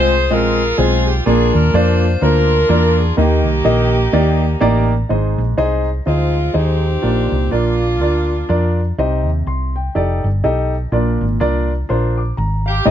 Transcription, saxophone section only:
0.00 0.31 F4 medium
0.00 0.76 G#4 medium
0.00 0.28 C5 loud
0.31 1.23 F4 medium
0.31 0.79 A#4 loud
0.78 1.06 G#4 loud
1.07 1.27 G4 medium
1.26 2.18 D4 medium
1.26 1.74 F4 medium
1.26 1.52 G#4 medium
1.54 1.74 A#4 loud
1.75 2.22 F4 medium
1.75 2.22 C5 loud
2.23 3.15 D4 medium
2.23 3.14 F4 medium
2.23 2.98 A#4 loud
2.98 3.18 G#4 medium
3.18 4.86 A#3 medium
3.18 4.87 D#4 medium
3.18 4.87 G4 medium
6.07 7.00 G#3 medium
6.07 6.54 C4 medium
6.07 6.52 F4 medium
6.55 7.49 C4 medium
6.55 7.49 D#4 medium
6.55 7.52 G4 medium
7.53 8.74 A#3 medium
7.53 8.74 D4 medium
7.53 8.78 F4 medium
12.68 12.86 G4 medium
12.87 12.91 C4 medium
12.87 12.91 D#4 medium
12.87 12.91 G#4 loud

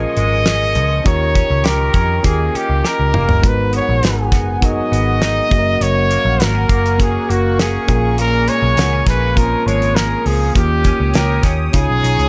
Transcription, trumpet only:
0.00 1.08 D#5 loud
1.07 1.68 C#5 loud
1.66 2.25 A#4 loud
2.26 2.58 G#4 medium
2.56 2.87 G4 medium
2.86 3.48 A#4 medium
3.46 3.74 B4 medium
3.76 4.30 C#5 medium
4.65 5.84 D#5 loud
5.82 6.45 C#5 loud
6.43 7.03 A#4 loud
7.02 7.32 G#4 medium
7.31 7.62 F#4 medium
7.60 8.19 G#4 loud
8.20 8.50 A#4 loud
8.49 9.08 C#5 loud
9.08 9.39 B4 loud
9.37 9.68 A#4 medium
9.67 9.97 C#5 medium
9.95 10.28 A#4 loud
10.27 10.55 G#4 medium
10.56 11.17 G4 medium
11.16 11.45 A#4 medium
11.75 12.29 G#4 loud

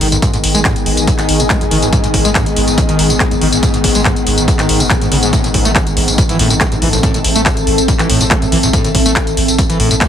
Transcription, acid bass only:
0.01 0.07 D#3 medium
0.12 0.18 G#1 loud
0.22 0.31 G#2 medium
0.33 0.37 G#2 loud
0.55 0.60 G#3 loud
0.65 0.74 G#2 loud
1.07 1.11 F#2 medium
1.19 1.41 D#3 loud
1.40 1.43 G#2 medium
1.50 1.56 G#3 medium
1.61 1.64 F#2 medium
1.71 1.77 D#3 medium
1.82 1.88 G#1 loud
1.93 2.02 G#2 medium
2.04 2.07 G#2 loud
2.25 2.31 G#3 loud
2.35 2.44 G#2 loud
2.78 2.81 F#2 medium
2.89 3.12 D#3 loud
3.10 3.13 G#2 medium
3.20 3.26 G#3 medium
3.31 3.35 F#2 medium
3.42 3.48 D#3 medium
3.53 3.58 G#1 loud
3.63 3.72 G#2 medium
3.74 3.77 G#2 loud
3.95 4.01 G#3 loud
4.05 4.14 G#2 loud
4.48 4.52 F#2 medium
4.59 4.82 D#3 loud
4.80 4.84 G#2 medium
4.90 4.94 G#2 medium
5.01 5.07 G#2 medium
5.12 5.18 C#3 loud
5.23 5.31 G#2 medium
5.33 5.42 A2 medium
5.44 5.47 A2 loud
5.65 5.71 A3 loud
6.18 6.22 G2 medium
6.29 6.38 E3 loud
6.39 6.49 A2 loud
6.50 6.54 A2 medium
6.61 6.67 A3 medium
6.72 6.75 G2 medium
6.82 6.88 E3 medium
6.93 6.99 A1 loud
7.03 7.12 A2 medium
7.14 7.18 A2 loud
7.36 7.41 A3 loud
7.88 7.92 G2 medium
7.99 8.08 E3 loud
8.10 8.19 A2 loud
8.21 8.24 A2 medium
8.31 8.37 A3 medium
8.42 8.45 G2 medium
8.52 8.58 E3 medium
8.63 8.69 A1 loud
8.73 8.83 A2 medium
8.84 8.88 A2 loud
9.06 9.11 A3 loud
9.58 9.62 G2 medium
9.70 9.78 E3 loud
9.80 9.89 A2 loud
9.91 9.94 A2 medium
10.01 10.07 A3 medium

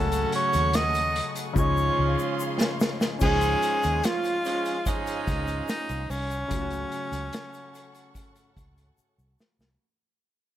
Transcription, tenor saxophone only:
0.00 0.35 A4 loud
0.35 0.77 C#5 loud
0.76 1.30 D#5 loud
1.59 2.36 C#5 loud
3.23 4.07 G#4 loud
4.05 4.89 F4 loud
4.88 5.69 D#4 loud
5.70 6.12 D#4 loud
6.11 8.98 C#4 loud

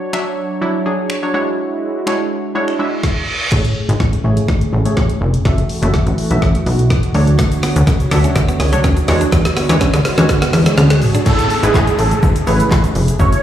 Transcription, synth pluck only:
0.13 0.50 F#3 medium
0.13 0.50 D4 medium
0.13 0.50 E5 loud
0.61 0.80 F#3 medium
0.61 0.80 D4 medium
0.61 0.80 E4 loud
0.85 1.13 F#3 medium
0.85 1.13 D4 medium
0.85 1.13 G#4 medium
1.23 1.34 F#3 medium
1.23 1.33 D4 medium
1.23 1.33 C#5 medium
1.34 1.93 G#3 medium
1.34 1.93 D4 medium
1.34 1.93 E4 medium
1.34 1.93 F#4 medium
1.34 1.93 C#5 loud
2.06 2.43 G#3 medium
2.06 2.43 D4 medium
2.06 2.43 E4 medium
2.06 2.43 F#4 medium
2.06 2.44 C#5 loud
2.55 2.73 G#3 medium
2.55 2.73 D4 medium
2.55 2.73 E4 medium
2.55 2.74 F#4 medium
2.55 2.74 C#5 loud
2.79 3.03 G#3 medium
2.79 3.03 D4 medium
2.79 3.03 E4 medium
2.79 3.04 F#4 medium
2.79 3.04 E5 medium
3.52 4.06 A3 medium
3.52 4.06 G#4 medium
3.52 4.06 C#5 medium
4.24 4.70 A3 medium
4.24 4.70 G#4 medium
4.24 4.70 C#5 loud
4.85 5.30 A3 medium
4.85 5.30 G#4 medium
4.85 5.31 C#5 loud
5.45 5.72 A3 medium
5.45 5.73 F#4 medium
5.45 5.73 E5 medium
5.82 6.18 A3 medium
5.82 6.18 F#4 medium
5.82 6.18 E5 medium
6.30 7.03 A3 medium
6.30 7.03 F#4 medium
6.30 7.03 E5 medium
7.14 7.92 F#3 medium
7.14 7.92 D4 medium
7.14 7.93 C#5 loud
8.11 8.57 F#3 medium
8.11 8.57 D4 medium
8.11 8.57 E5 loud
8.72 9.08 F#3 medium
8.72 9.07 D4 medium
8.72 9.07 C#5 loud
9.08 9.56 G#3 medium
9.08 9.57 D4 medium
9.08 9.57 F#4 medium
9.08 9.57 C#5 loud
9.69 10.05 G#3 medium
9.69 10.05 D4 medium
9.69 10.05 F#4 medium
9.69 10.05 C#5 medium
10.17 10.90 G#3 medium
10.17 10.90 D4 medium
10.17 10.90 F#4 medium
10.17 10.90 C#5 loud
11.26 11.53 A3 medium
11.26 11.53 E4 medium
11.26 11.53 G#4 medium
11.26 11.53 C#5 medium
11.63 12.25 A3 medium
11.63 12.25 E4 medium
11.63 12.26 G#4 medium
11.63 12.26 B4 medium
12.47 13.01 A3 medium
12.47 13.01 E4 medium
12.47 13.01 G#4 medium
12.47 13.01 C#5 medium
13.19 13.43 A3 medium
13.19 13.43 E4 medium
13.19 13.43 F#4 medium
13.19 13.43 C#5 medium

